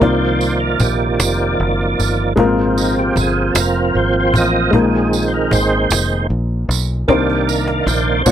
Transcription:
0.00 0.76 C2 loud
0.00 1.15 C3 medium
0.00 2.33 D#3 soft
0.00 2.34 F3 soft
0.00 2.32 A#3 soft
0.00 2.33 A#3 soft
0.00 2.33 D#4 soft
0.00 2.33 F4 soft
0.00 0.55 C5 medium
0.00 2.33 D5 soft
0.00 2.34 D5 medium
0.00 cajon bass medium
0.41 tambourine soft
0.56 0.60 C5 medium
0.60 0.80 A#4 medium
0.80 1.16 A#1 medium
0.80 1.55 G4 medium
0.80 cajon bass medium
0.80 tambourine soft
1.19 1.56 F1 medium
1.19 cajon slap medium
1.19 tambourine medium
1.58 1.95 F#1 medium
1.58 cajon slap soft
1.99 2.35 G1 medium
1.99 tambourine medium
2.36 3.12 G#1 loud
2.36 3.52 A#2 medium
2.36 4.36 F3 soft
2.36 4.69 G#3 medium
2.36 2.44 A#3 soft
2.36 4.37 A#3 soft
2.36 4.36 C4 soft
2.36 4.70 F4 medium
2.36 4.70 A#4 medium
2.36 cajon bass medium
2.44 4.72 C4 medium
2.76 2.95 D#4 medium
2.76 cajon slap soft
2.76 tambourine medium
2.99 3.18 G4 medium
3.16 3.52 G1 medium
3.16 cajon bass medium
3.16 tambourine medium
3.21 3.52 G#4 medium
3.52 3.91 F1 medium
3.52 3.57 A4 medium
3.52 cajon slap loud
3.52 tambourine medium
3.60 3.98 A#4 medium
3.94 4.31 G#1 medium
3.94 cajon slap soft
3.96 4.16 C5 medium
3.96 cajon slap soft
4.20 4.37 C5 medium
4.34 4.70 A1 medium
4.34 4.71 F3 soft
4.34 4.71 C4 medium
4.34 cajon bass medium
4.34 tambourine medium
4.38 4.72 A#3 soft
4.38 4.76 D#5 loud
4.71 5.48 A#1 loud
4.71 5.87 A#2 medium
4.71 7.04 G#3 medium
4.71 7.04 D#4 medium
4.71 7.05 F4 soft
4.71 7.06 A#4 medium
4.71 cajon bass medium
4.75 5.91 D#3 medium
4.75 5.90 G#3 soft
4.75 5.91 C4 medium
4.75 5.26 G#4 medium
5.13 tambourine medium
5.28 5.33 C5 medium
5.34 5.53 A#4 medium
5.51 5.88 G#1 medium
5.51 6.27 C5 loud
5.51 cajon bass medium
5.51 tambourine medium
5.90 6.27 F1 medium
5.90 6.27 D#3 soft
5.90 6.27 G#3 soft
5.90 6.27 C4 medium
5.90 cajon slap medium
5.90 tambourine medium
6.30 6.66 A#1 medium
6.30 cajon slap soft
6.69 7.05 B1 medium
6.69 tambourine medium
7.08 7.83 C2 loud
7.08 8.23 C3 medium
7.08 8.22 D#3 soft
7.08 8.26 A#3 medium
7.08 8.22 A#3 soft
7.08 8.25 D4 medium
7.08 8.27 D#4 medium
7.08 7.49 G4 medium
7.08 8.27 C5 medium
7.08 8.22 D5 medium
7.08 cajon bass medium
7.08 cajon slap medium
7.30 cajon slap soft
7.47 7.63 A#4 medium
7.47 tambourine medium
7.64 7.86 A#4 medium
7.64 cajon slap medium
7.85 8.23 A#1 medium
7.85 8.27 C5 medium
7.85 cajon slap medium
7.85 tambourine medium
8.26 8.31 C#2 loud
8.26 8.31 C#3 medium
8.26 8.31 F3 medium
8.26 8.31 B3 medium
8.26 8.31 B3 soft
8.26 8.31 D4 medium
8.26 8.31 F4 medium
8.26 8.31 C#5 medium
8.26 cajon bass medium
8.26 cajon slap soft
8.26 tambourine medium

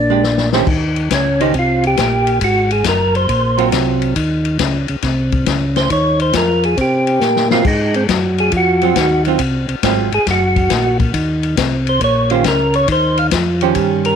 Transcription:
0.00 0.63 A#1 medium
0.00 0.49 D4 medium
0.10 0.22 G#3 medium
0.10 0.22 D4 medium
0.10 0.23 G4 medium
0.23 snare soft
0.38 snare medium
0.53 0.66 D#3 medium
0.53 0.66 C#4 medium
0.53 0.66 G4 medium
0.53 0.66 C5 medium
0.53 snare medium
0.67 1.09 D#2 medium
0.67 kick medium
0.67 crash medium
0.96 ride soft
1.11 1.53 C#2 medium
1.11 1.41 C#4 medium
1.11 kick soft
1.11 snare medium
1.11 hi-hat pedal medium
1.11 ride medium
1.40 1.53 D#3 medium
1.40 1.53 C#4 medium
1.40 1.54 D#4 medium
1.40 1.53 G4 medium
1.40 1.53 C5 medium
1.40 ride soft
1.54 1.96 C2 medium
1.54 kick soft
1.54 ride soft
1.59 1.85 F4 medium
1.83 2.39 G4 medium
1.83 ride soft
1.97 2.40 A#1 medium
1.97 kick soft
1.97 snare medium
1.97 hi-hat pedal medium
1.97 ride medium
2.27 ride soft
2.41 2.83 G#1 medium
2.41 2.71 F#4 medium
2.41 kick soft
2.41 ride medium
2.71 2.85 G#4 medium
2.71 ride soft
2.84 3.27 F#1 medium
2.84 kick soft
2.84 snare medium
2.84 hi-hat pedal medium
2.84 ride medium
2.88 3.15 A#4 medium
3.15 3.69 C5 medium
3.15 ride soft
3.29 3.71 A#1 medium
3.29 kick soft
3.29 ride medium
3.58 4.13 F#3 medium
3.58 4.13 C4 medium
3.58 4.13 F4 medium
3.58 ride soft
3.72 4.14 C2 medium
3.72 kick soft
3.72 snare medium
3.72 hi-hat pedal medium
3.72 ride medium
4.02 ride soft
4.16 4.58 D#2 medium
4.16 kick soft
4.16 ride medium
4.45 ride soft
4.59 4.87 C#2 medium
4.59 kick soft
4.59 snare medium
4.59 hi-hat pedal medium
4.59 ride medium
4.88 4.96 C#2 soft
4.88 ride soft
5.02 5.45 C2 medium
5.02 kick soft
5.02 snare soft
5.02 ride medium
5.32 kick medium
5.32 ride soft
5.46 5.89 C#2 medium
5.46 kick soft
5.46 snare medium
5.46 hi-hat pedal soft
5.46 ride medium
5.76 5.90 C5 medium
5.76 snare medium
5.76 ride soft
5.90 6.33 D#2 medium
5.90 6.20 C#5 medium
5.90 kick soft
5.90 ride medium
6.20 6.34 C5 medium
6.20 ride soft
6.33 6.76 F2 medium
6.33 kick soft
6.33 snare medium
6.33 hi-hat pedal medium
6.33 ride medium
6.37 6.64 A#4 medium
6.63 6.78 G#4 medium
6.63 ride soft
6.77 7.20 C3 medium
6.77 7.48 G4 medium
6.77 kick soft
6.77 ride medium
7.07 ride soft
7.21 7.63 A#2 medium
7.21 snare soft
7.21 hi-hat pedal medium
7.36 snare medium
7.51 7.64 F#3 medium
7.51 7.64 C4 medium
7.51 7.65 F4 medium
7.51 7.64 F4 medium
7.51 snare medium
7.65 8.07 G#2 medium
7.65 7.95 D#4 medium
7.65 kick medium
7.65 crash medium
7.94 8.04 C4 medium
7.94 ride soft
8.09 8.51 F#2 medium
8.09 kick soft
8.09 snare medium
8.09 hi-hat pedal medium
8.09 ride medium
8.38 8.53 G#4 medium
8.38 ride soft
8.52 8.94 F2 medium
8.52 kick soft
8.52 ride medium
8.57 9.23 F#4 medium
8.81 8.94 F#3 medium
8.81 8.95 C4 medium
8.81 8.95 F4 medium
8.81 ride soft
8.96 9.38 D#2 medium
8.96 kick soft
8.96 snare medium
8.96 hi-hat pedal medium
8.96 ride medium
9.25 9.38 F#3 medium
9.25 9.39 C4 medium
9.25 9.39 F4 medium
9.25 ride soft
9.39 9.67 C2 medium
9.39 kick soft
9.39 ride medium
9.69 9.76 C2 soft
9.69 ride soft
9.83 10.10 G#1 medium
9.83 10.10 F#3 medium
9.83 10.10 C4 medium
9.83 10.10 F4 medium
9.83 kick soft
9.83 snare medium
9.83 hi-hat pedal soft
9.83 ride medium
10.12 10.19 G#1 soft
10.12 10.27 G#4 loud
10.12 ride soft
10.27 10.69 F#1 medium
10.27 10.98 F#4 medium
10.27 kick soft
10.27 snare soft
10.27 ride medium
10.56 kick medium
10.56 ride soft
10.70 11.12 A#1 medium
10.70 kick soft
10.70 snare medium
10.70 hi-hat pedal medium
10.70 ride medium
11.00 kick medium
11.00 ride soft
11.14 11.56 D#2 medium
11.14 kick soft
11.14 ride medium
11.43 ride soft
11.57 12.00 C2 medium
11.57 kick soft
11.57 snare medium
11.57 hi-hat pedal medium
11.57 ride medium
11.87 12.02 C5 medium
11.87 ride soft
12.01 12.43 A#1 medium
12.01 12.31 C#5 loud
12.01 kick soft
12.01 ride medium
12.30 12.43 D#3 medium
12.30 12.43 C#4 medium
12.30 12.44 F4 medium
12.30 12.44 G4 medium
12.30 12.44 C5 medium
12.30 ride soft
12.44 12.87 C#2 medium
12.44 12.75 A#4 medium
12.44 kick soft
12.44 snare medium
12.44 hi-hat pedal medium
12.44 ride medium
12.74 12.88 C#5 loud
12.74 ride soft
12.88 13.30 D#2 medium
12.88 kick soft
12.88 ride medium
12.92 13.19 C5 medium
13.17 13.27 F5 medium
13.17 ride soft
13.31 13.74 F2 medium
13.31 kick soft
13.31 snare medium
13.31 hi-hat pedal medium
13.31 ride medium
13.61 14.16 D#3 medium
13.61 14.16 C#4 medium
13.61 14.16 G4 medium
13.61 14.16 C5 medium
13.61 ride soft
13.75 14.16 G2 medium
13.75 kick soft
13.75 ride medium
14.05 14.16 A#4 medium
14.05 ride medium

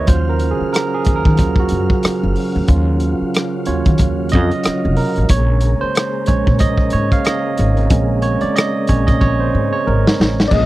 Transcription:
0.07 0.53 D#2 medium
0.07 5.25 C#3 medium
0.07 1.36 F#3 soft
0.07 5.25 F#3 medium
0.07 1.37 C#4 soft
0.07 1.37 F4 medium
0.07 0.28 C5 medium
0.07 2.66 F5 medium
0.07 kick loud
0.07 closed hi-hat medium
0.29 0.52 A#4 medium
0.39 closed hi-hat medium
0.51 0.73 G#4 medium
0.61 muted upright bass stroke soft
0.73 0.93 A#4 medium
0.73 cross-stick loud
0.73 closed hi-hat medium
0.94 1.04 G#4 medium
1.05 1.23 D#2 medium
1.05 kick medium
1.05 closed hi-hat medium
1.16 1.56 A#4 medium
1.25 1.37 D#3 loud
1.25 kick loud
1.37 1.67 D#2 medium
1.37 1.67 F#3 soft
1.37 1.67 C#4 soft
1.37 1.68 F4 medium
1.37 kick medium
1.37 closed hi-hat medium
1.56 kick medium
1.60 2.54 F#4 medium
1.69 1.88 F#2 medium
1.69 closed hi-hat medium
1.90 kick medium
2.03 muted upright bass stroke soft
2.03 cross-stick loud
2.03 closed hi-hat medium
2.23 2.35 F#1 medium
2.36 open hi-hat soft
2.56 2.67 D2 medium
2.68 3.13 D#2 medium
2.68 3.65 F#3 medium
2.68 3.65 C#4 soft
2.68 5.26 F4 medium
2.68 3.66 F4 medium
2.68 kick loud
2.68 closed hi-hat medium
3.00 closed hi-hat medium
3.22 muted upright bass stroke soft
3.34 cross-stick loud
3.34 closed hi-hat medium
3.65 3.84 D#2 medium
3.65 3.96 F#3 soft
3.65 3.96 C#4 soft
3.65 3.96 F4 medium
3.65 4.28 C#5 medium
3.65 closed hi-hat medium
3.85 4.02 D#3 medium
3.85 kick medium
3.85 closed hi-hat soft
3.98 4.35 D#2 medium
3.98 kick medium
3.98 closed hi-hat medium
4.29 4.93 D#5 loud
4.29 closed hi-hat medium
4.33 4.50 F2 medium
4.33 kick medium
4.51 closed hi-hat soft
4.64 muted upright bass stroke soft
4.64 cross-stick loud
4.64 closed hi-hat medium
4.85 4.96 F1 medium
4.96 5.11 A#4 medium
4.96 open hi-hat soft
5.16 5.29 A1 medium
5.16 closed hi-hat soft
5.29 5.74 A#1 loud
5.29 10.47 C#3 medium
5.29 10.47 G#3 medium
5.29 10.47 A#3 medium
5.29 5.83 C#5 medium
5.29 kick loud
5.29 closed hi-hat medium
5.61 closed hi-hat medium
5.81 6.27 C5 medium
5.81 muted upright bass stroke soft
5.95 cross-stick loud
5.95 closed hi-hat medium
6.26 6.45 A#1 medium
6.26 6.73 G#3 medium
6.26 6.73 C#4 medium
6.26 6.73 C5 medium
6.26 6.58 C#5 medium
6.26 kick medium
6.26 closed hi-hat medium
6.47 6.59 A#2 medium
6.47 kick medium
6.59 6.89 A#1 medium
6.59 6.90 D#5 loud
6.59 kick medium
6.59 closed hi-hat medium
6.78 kick medium
6.90 7.10 G#2 medium
6.90 7.01 C#5 loud
6.90 closed hi-hat medium
7.12 7.26 F5 loud
7.12 kick medium
7.12 closed hi-hat soft
7.25 7.40 D#5 medium
7.25 cross-stick loud
7.25 closed hi-hat medium
7.57 7.87 G#1 medium
7.57 closed hi-hat medium
7.77 closed hi-hat soft
7.90 8.35 A#1 loud
7.90 8.84 G#3 medium
7.90 8.84 C4 soft
7.90 8.85 C#4 medium
7.90 kick loud
7.90 closed hi-hat medium
8.22 8.42 C#5 medium
8.22 closed hi-hat medium
8.41 8.56 D5 medium
8.41 muted upright bass stroke soft
8.41 closed hi-hat soft
8.56 8.86 D#5 loud
8.56 cross-stick loud
8.56 closed hi-hat medium
8.87 9.05 A#1 medium
8.87 9.18 G#3 medium
8.87 9.18 C4 soft
8.87 9.18 C#4 medium
8.87 8.97 C#5 medium
8.87 kick medium
8.87 closed hi-hat medium
9.07 9.20 A#2 medium
9.07 9.21 D#5 medium
9.07 kick medium
9.07 closed hi-hat soft
9.21 9.50 A#1 medium
9.21 9.40 C#5 loud
9.21 kick medium
9.40 9.70 C5 medium
9.55 9.70 G#2 medium
9.73 9.85 C#5 medium
9.87 10.03 G#1 medium
9.87 10.17 A#4 medium
10.07 snare medium
10.20 10.47 A1 medium
10.20 snare loud
10.40 snare medium
10.47 10.66 F3 medium
10.47 10.66 A#3 medium
10.47 10.55 D5 medium
10.47 kick loud
10.47 crash medium
10.52 10.66 A#1 medium
10.52 10.66 G#3 medium
10.52 10.66 C#4 medium
10.52 10.66 G#4 medium
10.52 10.66 D#5 loud

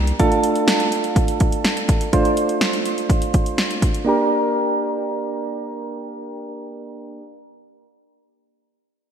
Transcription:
0.00 0.12 C2 medium
0.00 0.16 A#3 medium
0.00 0.16 D4 medium
0.00 0.16 G4 medium
0.00 0.16 A#4 medium
0.07 closed hi-hat medium
0.19 2.09 A3 medium
0.19 2.09 D4 medium
0.19 2.09 F4 medium
0.19 2.09 A4 medium
0.19 kick loud
0.19 closed hi-hat medium
0.32 closed hi-hat soft
0.44 closed hi-hat medium
0.56 closed hi-hat medium
0.68 snare loud
0.68 closed hi-hat medium
0.80 closed hi-hat soft
0.92 closed hi-hat medium
1.04 closed hi-hat soft
1.16 kick medium
1.16 closed hi-hat medium
1.28 closed hi-hat medium
1.40 kick medium
1.40 closed hi-hat medium
1.52 closed hi-hat soft
1.65 snare loud
1.65 closed hi-hat medium
1.77 closed hi-hat medium
1.89 kick medium
1.89 closed hi-hat medium
2.01 closed hi-hat medium
2.13 4.03 A3 medium
2.13 4.03 D4 medium
2.13 4.03 F4 medium
2.13 4.03 C5 medium
2.13 kick loud
2.13 closed hi-hat medium
2.25 closed hi-hat soft
2.37 closed hi-hat medium
2.49 closed hi-hat medium
2.61 snare loud
2.61 closed hi-hat medium
2.73 closed hi-hat soft
2.86 closed hi-hat medium
2.98 closed hi-hat soft
3.10 kick medium
3.10 closed hi-hat medium
3.22 closed hi-hat medium
3.34 kick medium
3.34 closed hi-hat medium
3.46 closed hi-hat soft
3.58 snare loud
3.58 closed hi-hat medium
3.71 closed hi-hat medium
3.82 kick medium
3.82 closed hi-hat medium
3.94 closed hi-hat medium
4.05 7.21 A#3 medium
4.05 7.22 D4 medium
4.05 7.24 G4 medium
4.09 7.25 A#4 medium

